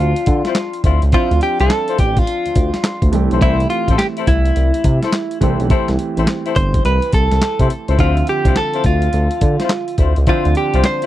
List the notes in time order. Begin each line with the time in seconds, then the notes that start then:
Already playing: F3 C4 D4 F4
0.00 D2
0.16 closed hi-hat
0.26 D3, kick, closed hi-hat
0.45 C4 E4 F4 C5, snare, closed hi-hat
0.55 snare, clap, closed hi-hat
0.73 closed hi-hat
0.84 D2 C4 E4 F4 C5, kick, closed hi-hat
1.02 C#2, closed hi-hat
1.12 F3 C4 D4 E4 F4 C5, kick, closed hi-hat
1.31 D2, closed hi-hat
1.41 G4, closed hi-hat
1.60 C2 C4 E4 F4 A4 C5, closed hi-hat
1.70 snare, clap, closed hi-hat
1.88 C4 E4 F4 C5, closed hi-hat
1.98 A1 G4, kick, closed hi-hat
2.17 F4, kick, closed hi-hat
2.27 closed hi-hat
2.46 D2, closed hi-hat
2.55 D2, kick, closed hi-hat
2.74 snare, closed hi-hat
2.84 snare, clap, closed hi-hat
3.02 D2, kick, closed hi-hat
3.12 C2 E3 A3 C4 G4, closed hi-hat
3.31 B1 C4 E4 A4 C5, closed hi-hat
3.41 C2 C4 E4 A4 C5, kick, closed hi-hat
3.60 closed hi-hat
3.70 F4, closed hi-hat
3.88 A1 C4 E4 A4 C5, kick, closed hi-hat
3.98 G4, snare, clap, closed hi-hat
4.17 C4 E4 A4 C5, closed hi-hat
4.27 C2 E4, kick, closed hi-hat
4.45 closed hi-hat
4.56 C2, closed hi-hat
4.74 closed hi-hat
4.84 C3, kick, closed hi-hat
5.02 C4 E4 A4 C5, snare, closed hi-hat
5.13 snare, clap, closed hi-hat
5.31 closed hi-hat
5.41 C2 E3 A3 C4 E4 G4 A4 C5, kick, closed hi-hat
5.60 B1, closed hi-hat
5.70 C4 E4 A4 C5, kick, closed hi-hat
5.88 C2, snare, closed hi-hat
5.99 closed hi-hat
6.16 A1 C4 E4 A4 C5, closed hi-hat
6.27 snare, clap, closed hi-hat
6.45 C4 E4 A4 C5, closed hi-hat
6.56 G1 C5, kick, closed hi-hat
6.74 kick, closed hi-hat
6.85 C2 B4, closed hi-hat
7.02 closed hi-hat
7.13 C2 A4, kick, closed hi-hat
7.31 C2, snare, closed hi-hat
7.42 snare, clap, closed hi-hat
7.59 C3 C4 E4 A4 C5, kick, closed hi-hat
7.70 closed hi-hat
7.88 C#2 C4 E4 A4 C5, closed hi-hat
7.98 D2 D3 F3 C4 E4 F4 C5 E5, kick, closed hi-hat
8.17 closed hi-hat
8.27 G4, closed hi-hat
8.45 C2 C4 E4 F4 C5, kick, closed hi-hat
8.56 A4, snare, clap, closed hi-hat
8.74 C4 E4 F4 C5, closed hi-hat
8.84 D2 F4, kick, closed hi-hat
9.02 closed hi-hat
9.13 D2, closed hi-hat
9.31 closed hi-hat
9.41 D3, kick, closed hi-hat
9.59 C4 E4 F4 C5, snare, closed hi-hat
9.69 snare, clap, closed hi-hat
9.88 closed hi-hat
9.98 D2 C4 E4 F4 C5, kick, closed hi-hat
10.16 C#2, closed hi-hat
10.27 D3 F3 C4 D4 E4 F4 C5, kick, closed hi-hat
10.45 D2, closed hi-hat
10.55 G4, closed hi-hat
10.73 C2 C4 E4 F4 C5, closed hi-hat
10.84 C5, snare, clap, closed hi-hat
11.02 C4 E4 F4 C5, closed hi-hat